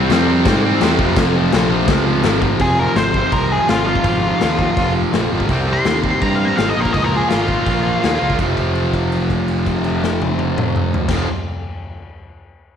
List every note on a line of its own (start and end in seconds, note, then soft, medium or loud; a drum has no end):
0.00 0.10 G3 medium
0.00 0.13 C4 medium
0.10 0.43 F2 medium
0.10 0.46 C3 medium
0.10 0.30 G3 medium
0.10 0.28 C4 medium
0.10 snare loud
0.10 crash medium
0.28 0.65 G3 medium
0.28 0.63 C4 medium
0.46 0.79 G#2 loud
0.46 kick loud
0.46 snare loud
0.46 crash medium
0.64 0.81 G3 medium
0.64 0.83 C4 medium
0.80 0.98 E2 medium
0.80 0.98 C3 loud
0.80 0.98 G3 loud
0.80 4.33 C4 loud
0.80 snare loud
0.80 crash medium
0.99 1.16 F1 loud
0.99 1.15 F2 medium
0.99 1.17 C3 medium
0.99 1.18 F3 medium
0.99 kick medium
1.16 1.50 F1 loud
1.16 1.52 F2 medium
1.16 1.36 C3 loud
1.16 1.32 F3 loud
1.16 kick loud
1.16 snare loud
1.16 crash medium
1.33 1.54 C3 medium
1.33 1.55 F3 medium
1.52 1.87 A#1 loud
1.52 1.89 F2 medium
1.52 1.72 C3 medium
1.52 1.69 F3 medium
1.52 snare loud
1.52 crash medium
1.70 2.08 C3 medium
1.70 2.05 F3 medium
1.88 2.22 C#2 medium
1.88 kick loud
1.88 snare loud
1.88 crash medium
2.06 2.24 C3 medium
2.06 2.25 F3 medium
2.23 2.58 G#1 medium
2.23 2.59 F2 medium
2.23 2.60 C3 loud
2.23 2.60 F3 loud
2.23 snare loud
2.23 crash medium
2.42 kick medium
2.59 2.87 F1 medium
2.59 2.96 F2 medium
2.59 2.80 C3 medium
2.59 2.79 G#4 medium
2.59 kick loud
2.59 open hi-hat medium
2.64 2.78 F3 medium
2.79 2.97 C3 medium
2.79 2.99 F3 medium
2.79 2.96 A#4 medium
2.96 3.23 G#1 medium
2.96 3.67 F2 medium
2.96 3.16 C3 medium
2.96 3.14 F3 medium
2.96 3.32 C5 medium
2.96 snare loud
2.96 open hi-hat medium
3.14 3.68 C3 medium
3.14 3.69 F3 medium
3.14 kick medium
3.32 3.59 C2 medium
3.32 3.52 A#4 medium
3.32 kick loud
3.32 open hi-hat medium
3.52 3.69 G#4 medium
3.68 3.95 G#1 medium
3.68 4.04 F2 medium
3.68 3.88 C3 medium
3.68 3.85 F3 loud
3.68 3.86 F4 medium
3.68 snare loud
3.68 open hi-hat medium
3.86 4.05 C3 medium
3.86 4.06 F3 medium
3.86 4.92 F4 loud
3.95 kick medium
4.04 4.31 G#1 medium
4.04 4.41 F2 medium
4.04 4.26 C3 medium
4.04 4.23 F3 loud
4.04 kick medium
4.04 open hi-hat medium
4.24 4.42 C3 medium
4.24 4.44 F3 medium
4.40 4.68 D#2 medium
4.40 4.78 F2 medium
4.40 4.61 C3 medium
4.40 snare loud
4.40 open hi-hat medium
4.45 4.58 F3 medium
4.59 5.13 C3 medium
4.59 5.15 F3 medium
4.59 kick medium
4.77 5.03 F1 medium
4.77 kick loud
4.77 open hi-hat medium
5.13 5.27 A#1 medium
5.13 5.48 F2 medium
5.13 5.34 C3 medium
5.13 5.31 F3 loud
5.13 snare loud
5.13 open hi-hat medium
5.32 5.45 G#1 medium
5.32 5.48 C3 medium
5.32 5.49 F3 medium
5.40 kick medium
5.49 5.75 C2 medium
5.49 5.85 C3 medium
5.49 5.70 G3 medium
5.49 5.67 C4 medium
5.49 kick medium
5.49 open hi-hat medium
5.68 5.87 G3 medium
5.68 5.88 C4 medium
5.73 5.97 C6 loud
5.84 6.12 D#2 medium
5.84 6.22 C3 medium
5.84 6.06 G3 medium
5.84 snare loud
5.84 open hi-hat medium
5.90 6.04 C4 medium
6.04 6.58 G3 medium
6.04 6.60 C4 medium
6.04 kick medium
6.11 6.22 C6 medium
6.22 6.48 G2 medium
6.22 6.34 A#5 loud
6.22 kick loud
6.22 open hi-hat medium
6.35 6.46 F5 medium
6.45 6.57 A#5 medium
6.57 6.72 G#1 medium
6.57 6.75 C3 medium
6.57 6.76 G3 medium
6.57 6.69 F5 loud
6.57 snare loud
6.57 open hi-hat medium
6.61 6.77 C4 medium
6.69 6.81 D#5 medium
6.77 6.90 A#1 medium
6.77 6.93 A#2 medium
6.77 6.96 F3 medium
6.77 6.96 A#3 medium
6.77 6.93 A#4 medium
6.85 kick medium
6.93 7.21 C#2 medium
6.93 7.31 A#2 medium
6.93 7.05 D#5 medium
6.93 kick medium
6.93 open hi-hat medium
6.97 7.15 F3 medium
6.97 7.12 A#3 medium
7.04 7.16 A#4 medium
7.13 7.32 F3 medium
7.13 7.33 A#3 medium
7.13 7.29 G#4 medium
7.29 7.58 G#1 medium
7.29 7.67 A#2 medium
7.29 7.41 F4 medium
7.29 snare loud
7.29 open hi-hat medium
7.33 7.51 F3 medium
7.33 7.48 A#3 medium
7.42 8.36 F4 loud
7.48 8.02 F3 medium
7.48 8.04 A#3 medium
7.48 kick medium
7.66 7.93 A#1 medium
7.66 kick loud
7.66 open hi-hat medium
8.02 8.17 D#2 medium
8.02 8.38 A#2 medium
8.02 8.23 F3 medium
8.02 8.19 A#3 loud
8.02 snare loud
8.02 open hi-hat medium
8.20 8.35 C#2 medium
8.20 8.40 F3 medium
8.20 8.38 A#3 medium
8.30 kick medium
8.38 11.01 F1 medium
8.38 11.09 F2 medium
8.38 11.11 C3 medium
8.38 kick loud
8.38 crash medium
8.42 11.13 F3 medium
8.57 kick medium
8.57 crash soft
8.75 crash soft
8.93 kick medium
8.93 crash soft
9.12 crash soft
9.30 kick medium
9.30 crash soft
9.48 crash soft
9.66 kick medium
9.66 crash soft
9.84 crash soft
10.04 snare medium
10.22 high tom medium
10.39 high tom medium
10.58 mid tom medium
10.76 mid tom medium
10.94 floor tom loud
11.09 11.24 F1 medium
11.09 11.26 F2 medium
11.09 11.27 C3 medium
11.09 kick loud
11.09 snare loud
11.09 crash loud
11.13 11.28 F3 loud